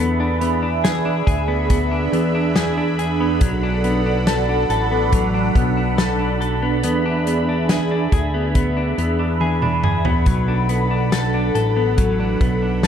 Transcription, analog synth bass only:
0.00 E2
1.27 D2
2.13 E2
3.41 B1
4.70 A1
5.55 B1
6.84 E2
8.12 D2
8.98 E2
10.26 B1
11.55 A1
12.41 B1

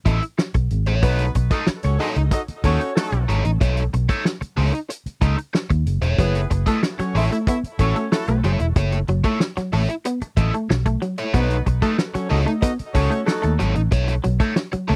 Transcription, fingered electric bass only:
0.06 A1
0.55 B1
0.71 G#1
0.87 A1
1.03 B1
1.35 B1
1.68 muted fingered electric bass stroke
1.84 C#2
2.16 C#2
2.48 muted fingered electric bass stroke
2.64 D#2
3.12 B1
3.29 G#1
3.45 A1
3.61 B1
3.94 B1
4.41 muted fingered electric bass stroke
4.58 C#2
5.06 muted fingered electric bass stroke
5.22 C#2
5.70 D#2
5.86 F#1
6.02 E1
6.19 F#1
6.51 F#1
6.99 muted fingered electric bass stroke
7.15 A1
7.64 muted fingered electric bass stroke
7.79 A1
8.28 B1
8.44 F#1
8.60 E1
8.76 F#1
9.08 F#1
9.57 muted fingered electric bass stroke
9.73 A1
10.22 muted fingered electric bass stroke
10.37 A1
10.70 B1
11.34 B1
11.67 B1
12.15 muted fingered electric bass stroke
12.31 C#2
12.80 muted fingered electric bass stroke
12.95 C#2
13.44 D#2
13.61 G#1
13.76 A1
13.92 B1
14.25 B1
14.74 muted fingered electric bass stroke
14.90 C#2

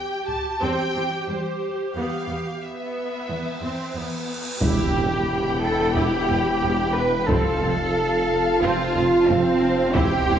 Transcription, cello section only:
0.62 E2
0.95 E2
1.28 E2
1.95 E2
2.28 E2
3.28 E2
3.62 E2
3.95 E2
4.61 G4
5.62 A4
5.95 G4
6.95 B4
7.28 A4
8.62 F4
9.29 C4
9.95 G4

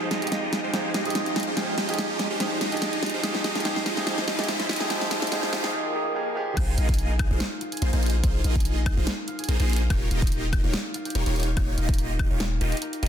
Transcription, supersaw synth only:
0.11 G#3 D#4 F4 G4 D#5
0.64 G#3 D#4 F4 G4 C5
0.74 G#3 D#4 F4 G4 C5
0.94 G#3 D#4 F4 G4 D#5
1.47 G#3 D#4 F4 G4 C5
1.57 G#3 D#4 F4 G4 C5
1.78 G#3 D#4 F4 G4 D#5
2.30 G#3 D#4 F4 G4 C5
2.40 G#3 D#4 F4 G4 C5
2.61 G#3 D#4 F4 G4 D#5
3.14 G#3 D#4 F4 G4 C5
3.23 G#3 D#4 F4 G4 C5
3.44 G#3 D#4 F4 G4 D#5
3.65 G#3 D#4 F4 G4 C5
3.86 G#3 D#4 F4 G4 D#5
4.07 G#3 D#4 F4 G4 C5
4.28 G#3 D#4 F4 G4 D#5
4.48 G#3 D#4 F4 G4 C5
4.69 G#3 D#4 F4 G4 D#5
4.90 G#3 D#4 F4 G4 C5
5.11 G#3 D#4 F4 G4 C5
5.32 G#3 D#4 F4 G4 C5
5.53 G#3 D#4 F4 G4 C5
6.57 A#3 D#4 F4 G#4 C5
6.78 A#3 D#4 F4 G#4 D#5
7.31 A#3 D#4 F4 G#4 C5
7.82 A#3 D#4 F4 G#4 C5
7.93 A#3 D#4 F4 G#4 C5
8.24 A#3 D#4 F4 G#4 C5
8.44 A#3 D#4 F4 G#4 D#5
8.97 A#3 D#4 F4 G#4 C5
9.49 A#3 D#4 F4 G#4 C5
9.60 A#3 D#4 F4 G#4 C5
9.90 A#3 D#4 F4 G4 C#5
10.11 A#3 D#4 F4 G4 D#5
10.64 A#3 D#4 F4 G4 C#5
11.15 A#3 D#4 F4 G4 C#5
11.26 A#3 D#4 F4 G4 C#5
11.57 A#3 D#4 F4 G4 C#5
11.78 A#3 D#4 F4 G4 D#5
12.30 A#3 D#4 F4 G4 C#5
12.61 A#3 D#4 F4 G4 D#5
13.03 A#3 D#4 F4 G4 D#5

